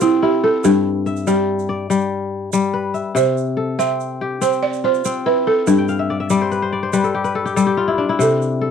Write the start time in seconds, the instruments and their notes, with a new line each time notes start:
Already playing: kora C3 F4 G4
0.01 kora C4, balafon E4, shaker
0.23 kora E4, balafon G4
0.44 kora A4, balafon A4
0.64 kora G2, balafon G4, shaker
1.06 kora E5, shaker
1.16 shaker
1.27 kora G3, balafon G4, shaker
1.59 shaker
1.69 kora D5
1.90 kora G3, shaker
2.01 shaker
2.53 kora G3, shaker
2.74 kora B4
2.94 kora E5, shaker
3.15 kora C3, balafon C5, shaker
3.37 shaker
3.57 kora A4
3.79 kora C4, balafon E5, shaker
4.00 shaker
4.21 kora G4
4.41 kora C4, balafon C5, shaker
4.52 shaker
4.63 balafon D5
4.73 shaker
4.84 kora F4, balafon C5
4.94 shaker
5.05 kora C4, shaker
5.26 kora E4, balafon B4
5.47 balafon A4, kora A4
5.67 kora G2, balafon G4, shaker
5.78 kora G5
5.88 kora F5, shaker
5.99 kora E5
6.10 kora D5
6.20 kora E5
6.30 kora G3 D5, shaker
6.42 kora C5
6.52 kora B4, shaker
6.62 kora C5
6.73 kora D5
6.83 kora C5
6.93 kora G3 B4, shaker
7.04 kora A4, shaker
7.15 kora G4
7.24 kora B4, shaker
7.35 kora A4
7.46 kora G4, shaker
7.56 kora G3 A4, shaker
7.67 kora G4
7.77 kora F4
7.88 kora E4
7.98 kora D4
8.09 kora E4
8.19 kora C3, balafon A4, shaker
8.42 shaker
8.61 kora A4